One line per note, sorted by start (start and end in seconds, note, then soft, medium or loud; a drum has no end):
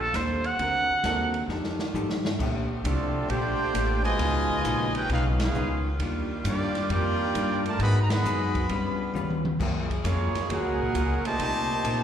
0.00 0.13 A#1 medium
0.00 1.48 C3 medium
0.00 0.58 A3 medium
0.00 0.58 A#3 medium
0.00 0.58 D4 medium
0.00 0.17 A4 loud
0.13 0.57 D#2 medium
0.13 0.46 A#3 medium
0.13 0.46 D4 medium
0.13 0.47 A4 medium
0.13 0.47 C5 medium
0.13 snare medium
0.13 hi-hat pedal medium
0.13 ride medium
0.44 1.50 F#5 loud
0.44 ride soft
0.59 0.87 D2 medium
0.59 0.91 D3 soft
0.59 1.49 F#3 medium
0.59 1.49 A#3 medium
0.59 0.91 C4 medium
0.59 1.49 D4 medium
0.59 0.92 F#4 medium
0.59 0.92 A#4 soft
0.59 kick soft
0.59 ride medium
0.89 muted upright bass stroke soft
1.04 1.47 D#2 medium
1.04 1.36 D3 medium
1.04 1.32 A#3 medium
1.04 1.32 C4 medium
1.04 1.36 C4 medium
1.04 1.32 D4 medium
1.04 1.32 F#4 medium
1.04 1.37 F#4 medium
1.04 1.32 A4 medium
1.04 1.37 A#4 medium
1.04 kick soft
1.04 snare medium
1.04 hi-hat pedal medium
1.04 ride medium
1.34 ride soft
1.48 1.92 F2 medium
1.48 2.23 D#3 medium
1.48 1.81 F3 soft
1.48 2.23 G3 medium
1.48 2.23 A3 medium
1.48 1.81 D#4 medium
1.48 2.23 F4 medium
1.48 1.82 G4 medium
1.48 1.82 A4 medium
1.48 snare soft
1.64 snare medium
1.79 snare medium
1.93 2.38 G2 medium
1.93 2.26 F3 medium
1.93 2.27 D#4 medium
1.93 2.27 G4 medium
1.93 2.27 A4 medium
1.93 floor tom medium
1.93 hi-hat pedal medium
2.10 snare medium
2.25 snare loud
2.39 2.83 A#1 medium
2.39 2.71 A#2 medium
2.39 4.18 D3 medium
2.39 2.71 A3 medium
2.39 4.18 A3 medium
2.39 4.19 C4 medium
2.39 2.72 D4 medium
2.39 4.18 G4 medium
2.39 2.72 G4 medium
2.39 kick medium
2.39 crash medium
2.84 3.28 C2 medium
2.84 3.17 A#2 medium
2.84 3.27 F3 medium
2.84 3.27 A3 medium
2.84 3.17 A3 medium
2.84 3.27 C4 medium
2.84 3.27 D4 medium
2.84 3.17 D4 medium
2.84 3.27 F4 medium
2.84 3.17 G4 medium
2.84 3.27 A4 medium
2.84 3.27 D5 medium
2.84 kick soft
2.84 hi-hat pedal medium
2.84 ride medium
3.29 3.57 A#1 medium
3.29 3.61 A#2 medium
3.29 4.05 A3 medium
3.29 3.62 A3 medium
3.29 4.05 D4 loud
3.29 3.62 D4 medium
3.29 4.03 F4 loud
3.29 4.05 G4 medium
3.29 3.63 G4 medium
3.29 4.05 C5 loud
3.29 4.05 D5 loud
3.29 4.05 G5 loud
3.29 kick soft
3.29 ride medium
3.59 muted upright bass stroke soft
3.74 4.18 A1 medium
3.74 4.06 A#2 medium
3.74 4.06 A3 medium
3.74 4.07 D4 medium
3.74 4.07 G4 medium
3.74 kick soft
3.74 hi-hat pedal medium
3.74 ride medium
4.04 4.91 B2 loud
4.04 4.91 F3 loud
4.04 4.91 G#3 medium
4.04 4.91 F4 loud
4.04 4.91 B4 medium
4.04 4.91 D#5 loud
4.04 4.91 G#5 loud
4.04 ride medium
4.19 4.63 C#2 medium
4.19 4.51 C#3 medium
4.19 8.66 D#3 medium
4.19 5.98 B3 medium
4.19 4.52 B3 medium
4.19 5.98 C#4 medium
4.19 4.52 D#4 medium
4.19 7.76 F4 medium
4.19 4.53 F4 medium
4.19 kick soft
4.19 snare soft
4.19 ride medium
4.50 kick medium
4.64 5.08 A#1 loud
4.64 4.97 C#3 medium
4.64 4.97 B3 medium
4.64 4.97 D#4 medium
4.64 4.98 F4 medium
4.64 hi-hat pedal medium
4.64 ride medium
4.95 5.10 D#4 medium
4.95 5.11 G4 medium
4.95 5.11 G#4 medium
4.95 5.10 B4 medium
4.95 5.10 G5 loud
4.95 ride medium
5.09 5.53 B1 loud
5.09 5.42 C#3 medium
5.09 5.25 G#3 medium
5.09 5.42 B3 soft
5.09 5.25 B3 medium
5.09 5.42 D#4 medium
5.09 5.25 D#4 medium
5.09 5.25 F4 medium
5.09 5.43 F4 medium
5.09 5.25 G#4 medium
5.09 5.25 B4 medium
5.09 5.25 F5 loud
5.09 kick soft
5.09 ride medium
5.40 5.83 G#3 medium
5.40 5.83 B3 medium
5.40 5.83 D#4 medium
5.40 5.83 F4 medium
5.40 5.83 G#4 medium
5.40 5.83 B4 medium
5.40 5.83 F5 medium
5.40 snare loud
5.40 ride medium
5.55 5.98 C#2 loud
5.55 5.87 C#3 medium
5.55 5.87 B3 medium
5.55 5.87 D#4 medium
5.55 5.88 F4 medium
5.55 hi-hat pedal medium
5.98 6.43 D#2 medium
5.98 6.32 D#3 medium
5.98 7.77 G3 medium
5.98 6.32 G3 medium
5.98 7.78 D4 medium
5.98 kick soft
5.98 ride medium
6.02 6.33 D4 medium
6.02 6.33 F4 medium
6.44 6.88 G2 loud
6.44 6.77 D#3 medium
6.44 6.77 G3 medium
6.44 6.89 G3 medium
6.44 6.88 A#3 medium
6.44 6.78 D4 medium
6.44 6.88 D4 medium
6.44 6.78 F4 medium
6.44 6.89 F4 medium
6.44 6.89 G4 medium
6.44 6.88 D5 medium
6.44 kick soft
6.44 hi-hat pedal medium
6.44 ride medium
6.75 snare soft
6.75 ride medium
6.89 7.33 F2 medium
6.89 7.22 D#3 medium
6.89 7.22 G3 medium
6.89 7.62 A#3 medium
6.89 7.23 D4 medium
6.89 7.62 D4 medium
6.89 7.62 F4 loud
6.89 7.23 F4 medium
6.89 7.62 G4 medium
6.89 7.62 A#4 medium
6.89 7.62 D5 medium
6.89 7.62 G5 loud
6.89 kick soft
6.89 ride medium
7.35 7.79 G2 loud
7.35 7.67 D#3 medium
7.35 7.67 G3 medium
7.35 7.67 D4 medium
7.35 7.68 F4 medium
7.35 kick soft
7.35 hi-hat pedal medium
7.35 ride medium
7.66 7.81 A3 medium
7.66 7.81 F4 medium
7.66 7.81 A#4 medium
7.66 7.81 D5 medium
7.66 7.81 A5 loud
7.66 ride medium
7.79 8.23 G#2 medium
7.79 8.00 D#3 loud
7.79 8.00 F#3 medium
7.79 8.69 G#3 medium
7.79 8.12 G#3 medium
7.79 9.42 B3 medium
7.79 8.00 B3 medium
7.79 8.12 D#4 medium
7.79 8.69 F#4 medium
7.79 8.12 F#4 medium
7.79 8.01 G#4 loud
7.79 8.13 B4 medium
7.79 8.01 D#5 medium
7.79 8.01 F#5 medium
7.79 8.01 B5 loud
7.79 kick soft
7.79 ride medium
8.01 8.10 A#5 medium
8.10 8.71 D#3 medium
8.10 8.70 F#3 medium
8.10 9.46 B3 medium
8.10 8.70 G#4 medium
8.10 8.70 D#5 medium
8.10 8.71 F#5 medium
8.10 9.46 B5 loud
8.10 snare loud
8.10 ride medium
8.24 8.68 F#2 loud
8.24 8.57 G#3 medium
8.24 8.57 D#4 medium
8.24 8.57 F#4 medium
8.24 8.58 B4 medium
8.24 hi-hat pedal medium
8.55 kick medium
8.55 ride medium
8.69 9.13 G2 medium
8.69 9.42 C#3 medium
8.69 9.42 G3 medium
8.69 9.02 G3 medium
8.69 9.02 C#4 medium
8.69 9.42 F4 medium
8.69 9.02 F4 medium
8.69 9.03 B4 medium
8.69 kick soft
8.69 ride medium
9.14 9.58 D2 medium
9.14 9.46 G3 medium
9.14 9.47 C#4 medium
9.14 9.47 F4 medium
9.14 9.47 B4 medium
9.14 hi-hat pedal medium
9.14 mid tom medium
9.30 mid tom medium
9.45 mid tom loud
9.59 10.03 F#2 medium
9.59 12.03 A#2 medium
9.59 11.38 C#3 medium
9.59 9.92 F#3 medium
9.59 11.38 G#3 medium
9.59 9.92 A#3 medium
9.59 9.93 F4 medium
9.59 11.38 G#4 medium
9.59 9.93 G#4 medium
9.59 kick medium
9.59 crash loud
9.90 kick medium
9.90 ride medium
10.04 10.33 F2 loud
10.04 10.47 F3 medium
10.04 10.36 F#3 medium
10.04 10.47 A#3 medium
10.04 10.37 A#3 medium
10.04 10.47 A#3 medium
10.04 10.47 C#4 medium
10.04 10.47 F4 medium
10.04 10.37 F4 medium
10.04 10.47 G#4 medium
10.04 10.37 G#4 medium
10.04 10.47 C#5 medium
10.04 kick soft
10.04 hi-hat pedal medium
10.04 ride medium
10.34 muted upright bass stroke soft
10.34 snare soft
10.34 ride medium
10.49 10.64 D#2 medium
10.49 10.82 F#3 soft
10.49 11.25 A#3 loud
10.49 10.82 A#3 medium
10.49 11.25 C#4 medium
10.49 10.83 F4 soft
10.49 11.25 F#4 medium
10.49 11.26 G#4 loud
10.49 10.83 G#4 medium
10.49 11.26 A#4 medium
10.49 11.26 F#5 loud
10.49 kick soft
10.49 ride medium
10.64 10.78 C#2 medium
10.79 10.93 A#1 medium
10.94 11.23 C#2 loud
10.94 11.26 F#3 medium
10.94 11.27 A#3 medium
10.94 11.27 F4 medium
10.94 11.27 G#4 medium
10.94 kick soft
10.94 hi-hat pedal medium
10.94 ride medium
11.24 12.03 A#2 loud
11.24 12.03 D#3 loud
11.24 12.03 A3 medium
11.24 12.03 G4 medium
11.24 12.03 C5 loud
11.24 12.03 D#5 loud
11.24 12.03 A5 loud
11.24 muted upright bass stroke soft
11.24 ride medium
11.38 11.83 C2 medium
11.38 11.71 C3 medium
11.38 12.03 D#3 medium
11.38 11.72 A#3 medium
11.38 12.03 C4 medium
11.38 11.72 D#4 medium
11.38 12.03 G4 medium
11.38 kick soft
11.38 ride medium
11.42 11.73 G4 medium
11.84 12.03 A#1 loud
11.84 12.03 C3 medium
11.84 12.03 A#3 medium
11.84 12.03 D#4 medium
11.84 12.03 G4 medium
11.84 kick soft
11.84 hi-hat pedal medium
11.84 ride medium